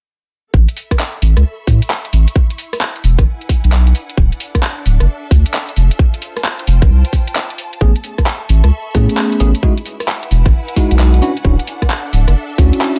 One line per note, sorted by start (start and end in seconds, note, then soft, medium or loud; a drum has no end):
0.54 0.67 A1 medium
0.54 2.36 A4 medium
0.54 kick loud
0.63 3.01 E5 medium
0.68 closed hi-hat soft
0.77 open hi-hat loud
0.85 3.01 B5 medium
0.91 kick medium
0.91 cross-stick medium
0.91 closed hi-hat medium
0.99 clap loud
1.22 1.35 A1 loud
1.22 open hi-hat loud
1.37 1.44 C#2 medium
1.37 3.01 C#6 medium
1.37 cross-stick medium
1.37 closed hi-hat medium
1.67 1.80 A2 medium
1.67 kick loud
1.67 open hi-hat loud
1.82 closed hi-hat medium
1.90 clap loud
2.05 closed hi-hat soft
2.13 2.26 A1 medium
2.13 open hi-hat loud
2.28 closed hi-hat medium
2.36 4.69 E4 medium
2.36 kick loud
2.50 closed hi-hat soft
2.58 open hi-hat loud
2.73 cross-stick medium
2.73 open hi-hat medium
2.81 4.69 B4 medium
2.81 clap loud
2.96 closed hi-hat soft
3.04 3.17 E1 loud
3.04 open hi-hat loud
3.08 5.77 F#5 medium
3.08 4.66 G#5 medium
3.19 3.26 G#1 medium
3.19 kick loud
3.19 cross-stick medium
3.19 closed hi-hat medium
3.41 closed hi-hat soft
3.49 kick medium
3.49 open hi-hat loud
3.64 3.93 B1 medium
3.64 closed hi-hat medium
3.72 clap loud
3.87 closed hi-hat soft
3.95 6.61 D4 medium
3.95 open hi-hat loud
4.09 closed hi-hat medium
4.17 4.31 D1 loud
4.17 kick loud
4.32 closed hi-hat soft
4.40 6.61 A4 medium
4.40 open hi-hat loud
4.55 kick medium
4.55 cross-stick medium
4.55 closed hi-hat medium
4.63 clap loud
4.79 6.40 E5 medium
4.86 4.99 D1 loud
4.86 open hi-hat loud
5.00 5.07 F#1 medium
5.00 cross-stick medium
5.00 closed hi-hat medium
5.31 5.44 D2 medium
5.31 kick loud
5.31 open hi-hat loud
5.46 closed hi-hat medium
5.54 clap loud
5.69 closed hi-hat soft
5.76 5.90 F1 medium
5.76 7.81 F4 medium
5.76 open hi-hat medium
5.91 closed hi-hat medium
5.99 kick loud
6.07 7.81 C5 medium
6.14 closed hi-hat soft
6.22 open hi-hat loud
6.36 8.55 A5 medium
6.36 cross-stick medium
6.36 open hi-hat medium
6.45 clap loud
6.59 7.81 G5 medium
6.59 closed hi-hat soft
6.67 6.80 F1 loud
6.67 open hi-hat loud
6.82 6.89 A1 medium
6.82 kick loud
6.82 cross-stick medium
6.82 closed hi-hat medium
6.90 7.03 C2 loud
7.05 closed hi-hat soft
7.13 kick medium
7.13 open hi-hat medium
7.27 closed hi-hat medium
7.35 clap loud
7.50 closed hi-hat soft
7.58 open hi-hat medium
7.73 closed hi-hat medium
7.81 7.94 A1 loud
7.81 7.90 A3 medium
7.81 7.90 B3 medium
7.81 7.91 C#4 medium
7.81 7.91 G#4 medium
7.81 9.63 A4 medium
7.81 kick loud
7.96 closed hi-hat soft
8.04 open hi-hat loud
8.10 10.28 E5 medium
8.10 10.28 C#6 medium
8.18 kick medium
8.18 cross-stick medium
8.18 closed hi-hat medium
8.26 clap loud
8.49 8.62 A1 loud
8.49 open hi-hat loud
8.64 8.71 C#2 medium
8.64 10.28 B5 medium
8.64 cross-stick medium
8.64 closed hi-hat medium
8.95 9.08 A2 medium
8.95 9.38 A3 medium
8.95 9.38 B3 medium
8.95 9.38 C#4 medium
8.95 9.38 G#4 medium
8.95 kick loud
8.95 open hi-hat loud
9.09 closed hi-hat medium
9.17 clap loud
9.32 closed hi-hat soft
9.40 9.53 A1 medium
9.40 9.50 A3 medium
9.40 9.50 B3 medium
9.40 9.50 C#4 medium
9.40 9.50 G#4 loud
9.40 open hi-hat loud
9.55 closed hi-hat medium
9.63 9.72 G#3 medium
9.63 9.72 D#4 medium
9.63 9.72 E4 medium
9.63 11.83 E4 medium
9.63 9.72 F#4 medium
9.63 kick loud
9.78 closed hi-hat medium
9.84 11.96 B4 medium
9.84 open hi-hat loud
10.00 12.99 F#5 loud
10.00 cross-stick medium
10.00 open hi-hat medium
10.08 clap loud
10.16 11.96 G#5 medium
10.23 closed hi-hat soft
10.31 10.44 E1 loud
10.31 open hi-hat loud
10.46 10.53 G#1 medium
10.46 kick loud
10.46 cross-stick medium
10.46 closed hi-hat medium
10.68 closed hi-hat soft
10.76 11.20 G#3 medium
10.76 11.20 D#4 medium
10.76 11.20 E4 medium
10.76 11.20 F#4 medium
10.76 kick medium
10.76 open hi-hat loud
10.91 11.21 B1 medium
10.91 closed hi-hat medium
10.99 clap loud
11.14 closed hi-hat medium
11.22 11.31 C#4 medium
11.22 11.31 D4 medium
11.22 12.99 D4 medium
11.22 11.31 E4 medium
11.22 11.31 F#4 loud
11.22 open hi-hat loud
11.37 12.99 A4 medium
11.37 closed hi-hat medium
11.45 11.58 D1 loud
11.45 11.54 C#4 medium
11.45 11.54 D4 medium
11.45 11.54 E4 medium
11.45 11.54 F#4 medium
11.45 kick loud
11.59 closed hi-hat medium
11.67 open hi-hat loud
11.82 kick medium
11.82 cross-stick medium
11.82 closed hi-hat medium
11.90 clap loud
12.06 12.99 E5 medium
12.13 12.26 D1 loud
12.13 open hi-hat loud
12.28 12.35 F#1 medium
12.28 cross-stick medium
12.28 closed hi-hat medium
12.58 12.71 D2 medium
12.58 12.99 C#4 medium
12.58 12.99 D4 medium
12.58 12.99 E4 medium
12.58 12.99 F#4 medium
12.58 kick loud
12.58 open hi-hat loud
12.73 closed hi-hat medium
12.81 clap loud
12.96 closed hi-hat medium